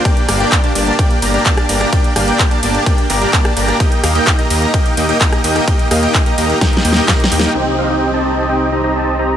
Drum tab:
RD |x-----x-----x-----x-----x-----x-----x-----x-----|x-----x-----x-----x-----x-----x-----x-----x-----|x-----x-----x-----x-----x-----x-----x-----x-----|x-----x-----x-----x-----x-----x-----x-----x-----|
HH |x--x--o--x--x--x--o--x--x--x--o--x--x--x--o--x--|x--x--o--x--x--x--o--x--x--x--o--x--x--x--o--x--|x--x--o--x--x--x--o--x--x--x--o--x--x--x--o--x--|x--x--o--x--x--x--o--x--x--x--o--x--x--x--o--x--|
CP |------------x-----------------------x-----------|------------x-----------------x-----x-----------|------------x-----------------------x-----------|------------x-----------------------x-----------|
SD |------r--------------------------------r-----r--|------r--------------------------------r-----r--|------r--------------------------------r-----r--|------r-----------------o---o---o---o---o---o---|
BD |o-----------o-----------o-----------o-----------|o-----------o-----------o-----------o-----------|o-----------o-----------o-----------o-----------|o-----------o-----------o-----------o-----------|

RD |------------------------------------------------|
HH |------------------------------------------------|
CP |------------------------------------------------|
SD |------------------------------------------------|
BD |------------------------------------------------|